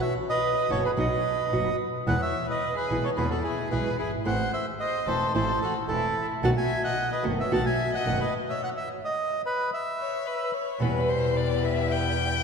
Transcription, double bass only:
0.70 F#1
0.97 B1
1.52 F#1
2.07 E2
2.88 B1
3.16 E2
3.70 B1
3.97 G1
4.24 A1
5.07 E1
5.34 A1
5.88 E1
6.43 B1
7.25 F#1
7.52 B1
8.06 F#1
10.82 E2

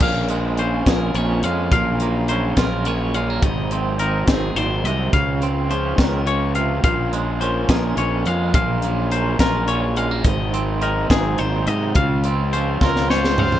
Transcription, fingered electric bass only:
0.01 A#1
0.86 A#1
1.14 A#1
1.43 F2
1.72 A#1
2.57 A#1
3.42 G#1
4.27 G#1
4.55 G#1
4.84 C2
5.13 C#2
5.98 C#2
6.84 A#1
7.69 A#1
7.97 A#1
8.26 F2
8.54 A#1
9.40 A#1
10.24 G#1
11.10 G#1
11.39 G#1
11.67 G#2
11.95 C#2
12.81 C#2

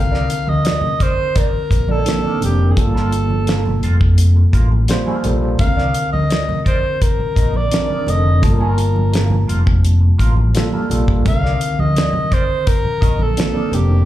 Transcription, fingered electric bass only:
Already playing: C2
0.48 D2
1.54 muted fingered electric bass stroke
1.71 A#1
2.42 F1
2.77 G1
3.84 F1
4.54 A1
5.25 A#1
5.60 C2
6.14 D2
7.20 muted fingered electric bass stroke
7.37 A#1
8.08 F1
8.43 G1
9.50 F1
10.20 A1
10.91 A#1
11.26 C2
11.79 D2
12.85 muted fingered electric bass stroke
13.02 A#1
13.74 F1

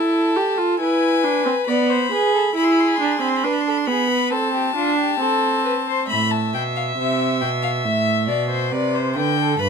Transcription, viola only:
Already playing: E4
0.36 G4
0.58 F4
0.80 E4
1.23 D4
1.45 C4
1.68 B3
2.12 G#4
2.55 E4
3.00 D4
3.21 C4
3.44 D4
3.87 B3
4.31 C4
4.76 D4
5.20 C4

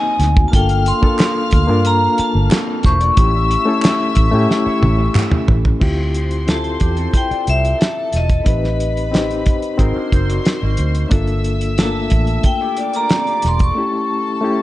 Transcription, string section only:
Already playing: D#5 D#6
0.52 F5 F6
3.16 E5 E6
5.81 C5 C6
7.79 A4 A5
8.45 B4 B5
9.79 C5 C6
11.12 E5 E6
12.78 D5 D6
13.76 A4 A5

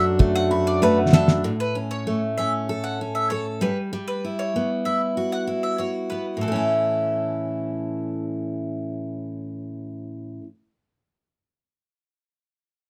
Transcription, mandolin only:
0.35 F#5
0.67 D5
0.83 B4
1.14 A4
1.60 B4
1.91 C#5
2.38 E5
2.84 F#5
3.15 E5
3.30 C#5
3.62 B4
4.08 B4
4.39 C#5
4.85 E5
5.32 F#5
5.63 E5
5.78 C#5
6.10 B4
6.41 A4

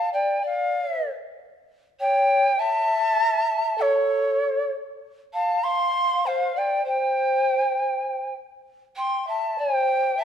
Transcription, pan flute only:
Already playing: F5
0.13 D5
0.42 D5
2.00 C#5
2.58 E5
3.78 A4
5.33 F5
5.63 F5
6.26 C5
6.55 D5
6.85 C5
8.96 G5
9.27 E5
9.58 C5
10.17 E5

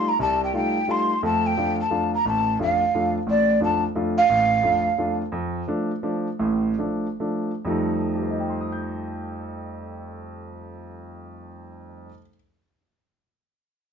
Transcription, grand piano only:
0.19 C2 C3
0.54 G3 A3 D#4 F4
0.88 G3 A3 D#4 F4
1.23 F2 A3
1.57 F2 A3 D4 F4
1.90 F2 A3 D4 F4
2.25 A1
2.59 F2 A3 D4 F4
2.95 F2 A3 D4 F4
3.27 A1 A2
3.61 F2 A3 D4 F4
3.95 F2 A3 D4 F4
4.30 A1 A2
4.63 F2 A3 D4 F4
4.98 F2 A3 D4 F4
5.32 F2
5.68 F3 A3 D4
6.03 F3 A3 D4
6.39 A1 A2
6.79 F3 A3 D4
7.20 F3 A3 D4
7.65 F2 F3 G3 A3 D#4
8.15 G4
8.23 C5
8.31 D#5
8.40 G5
8.50 C6
8.61 D#6
8.72 G6

